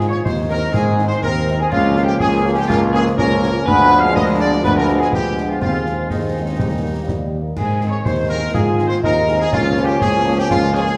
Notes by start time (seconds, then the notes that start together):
Already playing: G#2 D#3 C4 F4
0.01 C4 D#4, snare
0.07 C#5 C#6
0.24 D#2 D#4 C5 C6, concert bass drum, snare
0.49 C4 D#4 A#4 A#5
0.73 G#2 G#4 G#5, concert bass drum, snare
0.99 C4 D#4, snare
1.07 C5 C6, snare
1.22 D#2 C4 A#4 A#5, concert bass drum
1.47 C4 D#4, snare
1.59 G#4 G#5
1.70 C#2 F3 A#3 C#4 F4 F5, concert bass drum, crash
1.95 A#3 C#4 F4, snare
2.03 G4 G5
2.19 C#2 G#4 G#5, concert bass drum, snare
2.45 A#3 C#4 F4
2.55 G4 G5
2.67 C#2 A#3 F4 F5, concert bass drum, snare
2.92 A#3 C#4 F4 G#4 G#5, snare
3.06 snare
3.17 C#2 C#4 A#4 A#5, concert bass drum
3.42 A#3 C#4 F4, snare
3.66 D2 F3 G#3 B3 D4 B4 B5, concert bass drum, crash
3.92 snare
3.99 F5 F6
4.14 D2 A#3 D#5 D#6, concert bass drum, snare
4.39 D5 D6
4.63 D2 F3 G#3 B3 D4 B4 B5, concert bass drum, snare
4.76 A#4 A#5
4.89 snare
4.99 G#4 G#5, snare
5.13 D2 G4 G5, concert bass drum
5.37 snare
5.49 F4 F5
5.61 D#2 D#3 G#3 C4 F4 F5, concert bass drum, crash
5.86 snare
6.09 D#2 D#3 G#3 C4 D#4 D#5, concert bass drum, snare
6.43 C#4
6.58 D#2 D#3 G3 A#3 C4, concert bass drum, snare
6.82 A#3
7.06 D#2 G3, concert bass drum, snare
7.41 A#3
7.56 G#2 D#3 C4 G#4 G#5, concert bass drum, crash
7.81 D#3 G#3 C4, snare
7.89 C#5 C#6
8.05 D#2 D#4 C5 C6, concert bass drum, snare
8.29 D#3 G#3 C4 A#4 A#5
8.54 G#2 F4 G#4 G#5, concert bass drum, snare
8.79 D#3 G#3 C4, snare
8.87 C5 C6
8.91 snare
9.03 D#2 D#4 A#4 A#5, concert bass drum
9.28 D#3 G#3 C4, snare
9.39 G#4 G#5
9.52 C#2 F3 A#3 C#4 F4 F5, concert bass drum, crash
9.77 F3 A#3 C#4, snare
9.84 G4 G5
10.01 C#2 G#4 G#5, concert bass drum, snare
10.25 F3 A#3 C#4
10.37 G4 G5
10.49 C#2 F4 F5, concert bass drum, snare
10.73 F3 A#3 C#4 G#4 G#5, snare
10.87 snare